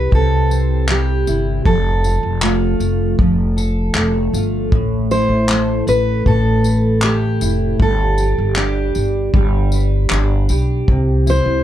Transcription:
0.00 0.10 C3 medium
0.00 0.88 G3 medium
0.00 1.26 E4 medium
0.00 0.10 B4 loud
0.11 1.23 C2 medium
0.11 1.73 C3 medium
0.11 0.86 A4 loud
0.11 kick loud
0.50 3.56 C5 medium
0.50 tambourine medium
0.89 1.73 G3 medium
0.89 1.62 G4 medium
0.89 clap loud
1.27 1.62 G1 medium
1.27 1.73 E4 medium
1.27 tambourine medium
1.65 2.19 F1 loud
1.65 3.18 F3 medium
1.65 2.38 A4 medium
1.65 kick loud
2.04 4.33 F4 medium
2.04 tambourine medium
2.23 2.76 F1 loud
2.42 3.95 A3 medium
2.42 3.15 F4 medium
2.42 clap loud
2.80 3.15 F1 medium
2.80 tambourine medium
3.19 3.92 F1 loud
3.19 4.80 F3 medium
3.19 kick loud
3.57 6.64 A4 medium
3.57 tambourine medium
3.95 4.30 F1 medium
3.95 5.50 A3 medium
3.95 clap loud
4.33 4.73 G1 medium
4.33 4.80 F4 medium
4.33 tambourine medium
4.72 5.26 A1 loud
4.72 6.25 A2 medium
4.72 kick loud
5.11 7.41 E4 medium
5.11 5.84 C5 loud
5.11 tambourine medium
5.29 5.83 A1 medium
5.49 7.02 A3 medium
5.49 clap loud
5.87 6.23 A1 medium
5.87 6.24 B4 loud
5.87 tambourine medium
6.26 7.38 A1 medium
6.26 7.88 A2 medium
6.26 7.04 A4 loud
6.26 kick loud
6.64 9.73 B4 medium
6.64 tambourine medium
7.02 7.79 A3 medium
7.02 7.77 G4 medium
7.02 clap loud
7.41 7.77 F1 medium
7.41 7.88 E4 medium
7.41 tambourine medium
7.80 8.34 G1 loud
7.80 9.34 G3 medium
7.80 8.54 A4 medium
7.80 kick loud
8.18 10.49 G4 medium
8.18 tambourine medium
8.38 8.92 G1 medium
8.56 10.10 D4 medium
8.56 9.30 G4 medium
8.56 clap loud
8.95 9.31 G1 medium
8.95 tambourine medium
9.34 10.07 G1 loud
9.34 11.63 G3 medium
9.34 kick loud
9.72 10.96 B4 medium
9.72 tambourine medium
10.10 10.47 G1 medium
10.10 10.96 D4 medium
10.10 clap loud
10.49 10.85 B1 medium
10.49 11.26 G4 medium
10.49 tambourine medium
10.88 11.42 C2 loud
10.88 11.63 C3 medium
10.88 kick loud
11.26 11.63 E4 medium
11.26 11.63 C5 loud
11.26 tambourine medium
11.46 11.63 C2 loud

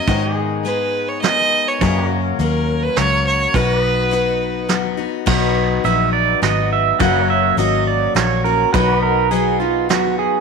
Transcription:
0.00 0.21 D#5 medium
0.07 0.65 G#2 medium
0.07 1.60 G#2 medium
0.07 0.65 D#3 medium
0.07 0.64 G#3 medium
0.07 0.64 B3 medium
0.07 0.65 D#4 medium
0.07 0.34 F#4 medium
0.07 0.68 A#4 medium
0.07 0.36 C#5 medium
0.07 kick loud
0.07 closed hi-hat medium
0.34 1.80 G#4 medium
0.34 1.81 D#5 medium
0.64 1.21 G#3 medium
0.64 1.22 B3 medium
0.64 1.22 D#4 medium
0.64 1.10 B4 medium
0.64 closed hi-hat medium
1.08 1.21 C#5 medium
1.22 1.81 G#3 medium
1.22 1.81 B3 medium
1.22 1.81 D#4 medium
1.22 1.81 A#4 medium
1.22 1.69 D#5 loud
1.22 snare medium
1.22 closed hi-hat medium
1.68 1.96 C#5 medium
1.81 2.32 F#2 loud
1.81 2.39 F#2 medium
1.81 2.39 C#3 medium
1.81 2.39 F#3 medium
1.81 2.38 A#3 medium
1.81 2.39 C#4 medium
1.81 2.07 G#4 medium
1.81 2.39 A#4 medium
1.81 2.03 B4 medium
1.81 2.09 D#5 medium
1.81 kick loud
1.81 closed hi-hat medium
2.03 3.54 A#4 medium
2.07 3.53 F#4 medium
2.07 3.54 C#5 medium
2.39 2.88 D#2 medium
2.39 2.96 F#3 medium
2.39 2.96 A#3 medium
2.39 2.96 C#4 medium
2.39 2.84 A#4 medium
2.39 2.97 A#4 medium
2.39 closed hi-hat medium
2.83 2.98 B4 medium
2.96 3.46 C#2 medium
2.96 3.55 F#3 medium
2.96 3.55 A#3 medium
2.96 3.55 C#4 medium
2.96 3.55 A#4 medium
2.96 3.26 C#5 loud
2.96 snare medium
2.96 closed hi-hat medium
3.27 3.56 C#5 medium
3.54 5.06 B1 medium
3.54 4.12 B2 medium
3.54 4.10 F#3 medium
3.54 4.10 B3 medium
3.54 4.11 D#4 medium
3.54 5.26 F#4 medium
3.54 4.12 F#4 medium
3.54 3.76 A#4 medium
3.54 4.70 B4 medium
3.54 3.83 C#5 medium
3.54 kick medium
3.54 closed hi-hat medium
3.76 5.27 B4 medium
3.83 5.27 D#5 medium
4.11 4.67 F#3 medium
4.11 4.68 B3 medium
4.11 4.68 D#4 medium
4.11 4.69 F#4 medium
4.11 closed hi-hat medium
4.69 4.98 F#3 medium
4.69 4.98 B3 medium
4.69 4.97 D#4 medium
4.69 4.96 F#4 medium
4.69 snare medium
4.69 closed hi-hat medium
4.97 5.26 B3 soft
4.97 5.26 D#4 soft
4.97 5.26 F#4 medium
5.26 5.78 B1 medium
5.26 5.84 B2 medium
5.26 5.84 F#3 medium
5.26 5.84 B3 medium
5.26 5.85 D#4 medium
5.26 5.86 F#4 medium
5.26 6.98 F#4 medium
5.26 6.99 B4 medium
5.26 7.00 D#5 medium
5.26 kick loud
5.26 crash loud
5.84 6.34 A#1 medium
5.84 6.41 F#3 medium
5.84 6.42 B3 medium
5.84 6.41 D#4 medium
5.84 6.43 F#4 medium
5.84 6.12 E5 medium
5.84 closed hi-hat medium
6.13 6.41 D5 medium
6.42 6.91 G#1 medium
6.42 7.00 F#3 medium
6.42 7.00 B3 medium
6.42 7.00 D#4 medium
6.42 7.00 F#4 medium
6.42 6.71 D#5 medium
6.42 snare medium
6.42 closed hi-hat medium
6.73 7.00 E5 medium
6.99 7.51 F#1 medium
6.99 7.58 F#2 medium
6.99 7.58 C#3 medium
6.99 7.57 F#3 medium
6.99 7.57 A#3 medium
6.99 7.57 C#4 medium
6.99 8.71 F#4 medium
6.99 7.58 F#4 medium
6.99 7.21 B4 medium
6.99 7.26 D#5 medium
6.99 7.29 F#5 loud
6.99 kick loud
6.99 closed hi-hat medium
7.21 8.72 A#4 medium
7.26 8.72 C#5 medium
7.26 7.58 E5 medium
7.57 8.07 G#1 medium
7.57 8.14 F#3 medium
7.57 8.14 A#3 medium
7.57 8.15 C#4 medium
7.57 8.16 F#4 medium
7.57 7.87 D#5 medium
7.57 closed hi-hat medium
7.87 8.15 D5 medium
8.15 8.64 A#1 medium
8.15 8.44 F#3 soft
8.15 8.44 A#3 medium
8.15 8.44 C#4 medium
8.15 8.44 F#4 medium
8.15 8.44 C#5 medium
8.15 snare medium
8.15 closed hi-hat medium
8.44 8.73 F#3 soft
8.44 8.74 A#3 soft
8.44 8.74 C#4 soft
8.44 8.74 F#4 medium
8.44 8.72 A#4 medium
8.73 10.25 B1 loud
8.73 9.31 B2 medium
8.73 9.31 F#3 medium
8.73 9.30 B3 medium
8.73 9.31 D#4 medium
8.73 10.40 F#4 medium
8.73 9.33 F#4 medium
8.73 8.94 A#4 medium
8.73 9.01 B4 medium
8.73 9.00 C#5 medium
8.73 kick loud
8.73 closed hi-hat medium
8.94 10.40 B4 medium
9.00 9.30 A#4 medium
9.00 10.40 D#5 medium
9.31 9.60 F#3 medium
9.31 9.60 B3 medium
9.31 9.60 D#4 medium
9.31 9.59 F#4 medium
9.31 9.59 G#4 medium
9.31 closed hi-hat medium
9.60 9.89 B3 soft
9.60 9.89 D#4 soft
9.60 9.88 F4 medium
9.60 9.89 F#4 soft
9.89 10.40 F#3 medium
9.89 10.40 B3 medium
9.89 10.40 D#4 medium
9.89 10.17 F#4 medium
9.89 10.40 F#4 medium
9.89 snare medium
9.89 closed hi-hat medium
10.19 10.40 G#4 medium

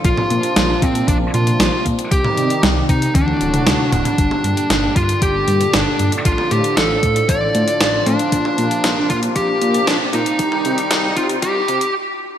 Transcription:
0.00 2.08 F3 medium
0.00 2.08 F4 medium
0.05 0.14 A#1 loud
0.05 3.12 C3 medium
0.05 2.09 A#3 medium
0.05 2.09 D4 medium
0.05 0.85 F4 loud
0.05 kick loud
0.05 closed hi-hat medium
0.17 mid tom medium
0.30 0.40 A#2 medium
0.30 closed hi-hat medium
0.43 closed hi-hat medium
0.56 0.75 A#1 medium
0.56 snare loud
0.56 closed hi-hat medium
0.82 1.01 A#2 loud
0.82 1.08 C4 medium
0.82 kick loud
0.82 closed hi-hat medium
0.95 closed hi-hat medium
1.08 1.26 A#1 medium
1.08 1.15 D4 medium
1.08 kick loud
1.08 closed hi-hat medium
1.34 1.52 A#2 loud
1.34 1.82 F4 medium
1.34 closed hi-hat medium
1.47 closed hi-hat medium
1.60 1.69 A#1 medium
1.60 snare loud
1.60 closed hi-hat medium
1.86 1.95 A#2 loud
1.86 kick medium
1.86 closed hi-hat medium
1.99 closed hi-hat medium
2.11 2.21 C2 loud
2.11 3.14 D#3 medium
2.11 3.14 G3 medium
2.11 3.14 D#4 medium
2.11 3.14 G4 medium
2.11 2.60 G4 loud
2.11 kick loud
2.11 closed hi-hat medium
2.24 mid tom medium
2.37 2.47 C3 medium
2.37 closed hi-hat medium
2.50 closed hi-hat medium
2.63 2.82 C2 medium
2.63 snare loud
2.63 closed hi-hat medium
2.89 3.08 C3 loud
2.89 3.13 D#4 loud
2.89 kick loud
2.89 closed hi-hat medium
3.02 closed hi-hat medium
3.15 3.33 D2 medium
3.15 4.17 A2 medium
3.15 4.17 D3 medium
3.15 4.17 F#3 medium
3.15 4.17 D4 medium
3.15 3.89 D4 loud
3.15 4.17 F#4 medium
3.15 kick loud
3.15 closed hi-hat medium
3.15 high tom medium
3.28 high tom medium
3.41 3.59 D1 medium
3.41 closed hi-hat medium
3.54 closed hi-hat medium
3.54 mid tom medium
3.67 3.76 D2 medium
3.67 snare loud
3.67 closed hi-hat medium
3.67 mid tom medium
3.92 4.02 D1 medium
3.92 4.96 D4 medium
3.92 kick medium
3.92 closed hi-hat medium
3.92 mid tom loud
4.05 closed hi-hat medium
4.05 mid tom medium
4.18 4.28 G1 loud
4.18 6.23 A#2 medium
4.18 8.28 D3 medium
4.18 6.23 G3 medium
4.18 10.35 D4 medium
4.18 6.23 G4 medium
4.18 kick loud
4.18 closed hi-hat medium
4.31 mid tom medium
4.44 4.53 G2 medium
4.44 closed hi-hat medium
4.57 closed hi-hat medium
4.70 4.89 G1 medium
4.70 snare loud
4.70 closed hi-hat medium
4.96 5.14 G2 loud
4.96 5.20 F4 medium
4.96 kick loud
4.96 closed hi-hat medium
5.09 closed hi-hat medium
5.22 5.40 G1 medium
5.22 5.75 G4 loud
5.22 kick loud
5.22 closed hi-hat medium
5.48 5.66 G2 loud
5.48 closed hi-hat medium
5.61 closed hi-hat medium
5.74 5.83 G1 medium
5.74 6.10 D4 medium
5.74 snare loud
5.74 closed hi-hat medium
5.99 6.09 G2 loud
5.99 closed hi-hat medium
6.12 closed hi-hat medium
6.25 6.35 A1 loud
6.25 8.30 A2 medium
6.25 10.35 F3 medium
6.25 6.52 F4 loud
6.25 10.35 F4 medium
6.25 kick loud
6.25 closed hi-hat loud
6.38 mid tom medium
6.51 6.60 A2 medium
6.51 6.77 G4 medium
6.51 closed hi-hat medium
6.64 closed hi-hat medium
6.77 6.95 A1 medium
6.77 7.30 A4 loud
6.77 snare loud
6.77 closed hi-hat medium
7.03 7.21 A2 loud
7.03 kick loud
7.03 closed hi-hat medium
7.16 closed hi-hat medium
7.29 7.47 A1 medium
7.29 8.09 D5 loud
7.29 kick loud
7.29 closed hi-hat medium
7.55 7.64 A2 loud
7.55 closed hi-hat medium
7.68 closed hi-hat medium
7.81 7.99 A1 loud
7.81 snare loud
7.81 closed hi-hat loud
8.06 8.16 A2 medium
8.06 9.10 D4 medium
8.06 closed hi-hat medium
8.19 closed hi-hat medium
8.32 8.41 A#1 loud
8.32 11.91 C3 medium
8.32 10.37 A#3 medium
8.32 kick loud
8.32 closed hi-hat medium
8.45 mid tom medium
8.58 8.67 A#2 medium
8.58 closed hi-hat medium
8.71 closed hi-hat medium
8.84 9.02 A#1 medium
8.84 snare loud
8.84 closed hi-hat medium
9.10 9.28 A#2 loud
9.10 9.17 F4 medium
9.10 kick loud
9.10 closed hi-hat medium
9.23 closed hi-hat medium
9.36 9.54 A#1 medium
9.36 9.84 G4 loud
9.36 kick loud
9.36 closed hi-hat medium
9.62 9.80 A#2 loud
9.62 closed hi-hat medium
9.74 closed hi-hat medium
9.87 9.97 A#1 loud
9.87 9.95 D4 medium
9.87 snare loud
9.87 closed hi-hat medium
10.13 10.23 A#2 loud
10.13 11.16 D#4 loud
10.13 closed hi-hat medium
10.26 closed hi-hat medium
10.39 10.48 C2 loud
10.39 11.93 D#3 medium
10.39 11.93 G3 medium
10.39 11.93 D#4 medium
10.39 11.93 G4 medium
10.39 kick loud
10.39 closed hi-hat medium
10.52 mid tom medium
10.65 10.74 C3 medium
10.65 closed hi-hat medium
10.78 closed hi-hat medium
10.91 11.09 C2 medium
10.91 snare loud
10.91 closed hi-hat medium
11.17 11.35 C3 loud
11.17 11.24 F4 medium
11.17 kick loud
11.17 closed hi-hat medium
11.29 closed hi-hat medium
11.42 11.61 C2 medium
11.42 11.91 G4 medium
11.42 kick loud
11.42 closed hi-hat medium
11.68 11.78 C3 loud
11.68 closed hi-hat medium
11.81 closed hi-hat medium

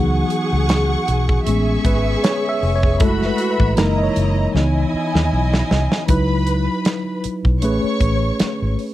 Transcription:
0.00 0.22 C#2 loud
0.00 1.05 E3 medium
0.00 1.05 F#3 medium
0.00 1.05 B3 medium
0.00 1.05 D#4 medium
0.00 0.54 F#4 medium
0.00 1.44 G#4 medium
0.00 1.43 F#5 medium
0.00 1.43 C#6 medium
0.30 closed hi-hat medium
0.53 0.95 C#2 medium
0.69 snare loud
0.69 closed hi-hat medium
1.08 1.37 B1 medium
1.08 closed hi-hat medium
1.29 kick medium
1.45 1.76 A1 loud
1.45 1.99 G#3 medium
1.45 1.99 B3 soft
1.45 2.00 C#4 medium
1.45 2.97 G#4 medium
1.45 2.97 E5 medium
1.45 2.97 C#6 medium
1.45 closed hi-hat medium
1.85 2.14 G#1 loud
1.85 2.25 B4 medium
1.85 kick medium
1.85 closed hi-hat medium
2.24 2.48 C#5 loud
2.24 snare loud
2.24 closed hi-hat medium
2.49 2.61 E5 loud
2.63 3.01 F1 loud
2.63 open hi-hat soft
2.76 3.02 C#5 medium
2.83 kick medium
3.00 3.30 F#1 loud
3.00 3.74 G#3 medium
3.00 3.74 A3 medium
3.00 3.74 E4 medium
3.00 3.76 F#4 medium
3.00 3.27 A4 medium
3.00 3.76 E5 medium
3.00 3.76 B5 loud
3.00 kick loud
3.00 closed hi-hat loud
3.22 3.50 B4 medium
3.22 snare soft
3.38 closed hi-hat medium
3.51 3.75 B4 medium
3.60 3.73 A1 medium
3.60 kick medium
3.77 4.07 F#1 medium
3.77 4.30 E3 medium
3.77 4.30 G#3 soft
3.77 4.30 A#3 medium
3.77 4.30 D#4 medium
3.77 4.54 E4 medium
3.77 3.99 A#4 medium
3.77 4.53 D#5 medium
3.77 4.53 A#5 medium
3.77 snare loud
3.77 closed hi-hat medium
3.98 4.04 D#5 medium
4.03 5.15 C#5 medium
4.16 4.46 F#1 medium
4.16 closed hi-hat medium
4.54 4.84 C#2 loud
4.54 5.07 E3 medium
4.54 5.08 B3 soft
4.54 5.08 D#4 medium
4.54 6.06 E4 medium
4.54 6.06 D#5 medium
4.54 6.06 G#5 medium
4.54 snare medium
4.94 muted fingered electric bass stroke medium
5.15 5.28 D#2 loud
5.15 snare medium
5.33 5.62 B1 loud
5.54 snare medium
5.71 5.87 C2 loud
5.71 snare medium
5.92 snare medium
6.08 6.67 C#2 loud
6.08 7.02 F#3 medium
6.08 7.03 D#4 medium
6.08 7.03 E4 medium
6.08 7.22 B4 medium
6.08 7.03 B4 loud
6.08 7.22 B5 loud
6.08 kick loud
6.08 closed hi-hat loud
6.47 closed hi-hat medium
6.85 snare medium
6.85 closed hi-hat medium
7.24 muted fingered electric bass stroke soft
7.24 closed hi-hat medium
7.45 7.64 B1 medium
7.45 kick medium
7.60 7.79 A1 loud
7.60 8.56 A3 medium
7.60 8.57 C#4 medium
7.60 8.57 G#4 medium
7.60 8.75 C#5 medium
7.60 8.75 C#6 loud
7.60 closed hi-hat medium
7.64 8.57 B4 medium
7.84 muted fingered electric bass stroke soft
8.00 8.30 A1 medium
8.00 kick medium
8.00 closed hi-hat medium
8.39 muted fingered electric bass stroke soft
8.39 snare loud
8.39 closed hi-hat medium
8.62 8.75 G#1 medium
8.79 open hi-hat soft

